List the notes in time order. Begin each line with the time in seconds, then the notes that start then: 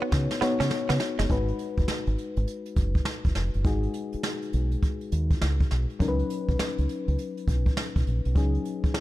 Already playing: B3 D#4 F#4 B4 C#5
0.02 B3
0.12 C#3, muted clean electric guitar stroke, kick, snare
0.31 snare
0.41 B3 D#4 F#4 C#5, muted fingered electric bass stroke, snare
0.60 C#3 C#4, snare
0.71 snare
0.89 C#3 B3, snare
1.00 muted clean electric guitar stroke, snare
1.19 F#1 G#3, snare
1.29 G#1 G#3 D#4 F#4 B4, kick, closed hi-hat
1.48 closed hi-hat
1.59 closed hi-hat
1.77 F#1, kick, closed hi-hat
1.88 muted fingered electric bass stroke, snare
2.07 G#1, closed hi-hat
2.18 closed hi-hat
2.36 G#1, closed hi-hat
2.47 closed hi-hat
2.66 closed hi-hat
2.76 F#1, kick, closed hi-hat
2.95 kick, closed hi-hat
3.05 snare
3.24 F#1, kick, closed hi-hat
3.35 F1, snare, closed hi-hat
3.54 F#1, closed hi-hat
3.64 G#1 G#3 D#4 F#4 G#4, kick, closed hi-hat
3.83 closed hi-hat
3.94 closed hi-hat
4.13 muted fingered electric bass stroke, closed hi-hat
4.23 snare
4.42 closed hi-hat
4.53 B1, closed hi-hat
4.71 closed hi-hat
4.82 kick, closed hi-hat
5.01 closed hi-hat
5.12 D#2, closed hi-hat
5.31 kick, closed hi-hat
5.41 C#2, snare
5.60 kick, closed hi-hat
5.71 B1, snare, closed hi-hat
5.90 closed hi-hat
5.99 C#2 F#3 C#4 D#4 A#4, kick, closed hi-hat
6.08 B4
6.19 closed hi-hat
6.30 closed hi-hat
6.49 B1, kick, closed hi-hat
6.59 muted fingered electric bass stroke, snare
6.78 C#2, closed hi-hat
6.89 closed hi-hat
7.08 C#2, closed hi-hat
7.18 closed hi-hat
7.37 closed hi-hat
7.48 B1, kick, closed hi-hat
7.66 kick, closed hi-hat
7.77 snare
7.96 B1, kick, closed hi-hat
8.07 A#1, closed hi-hat
8.25 B1, closed hi-hat
8.35 C#2 F#3 C#4 D#4 G#4, kick, closed hi-hat
8.55 closed hi-hat
8.65 closed hi-hat
8.84 muted fingered electric bass stroke, kick, closed hi-hat
8.94 snare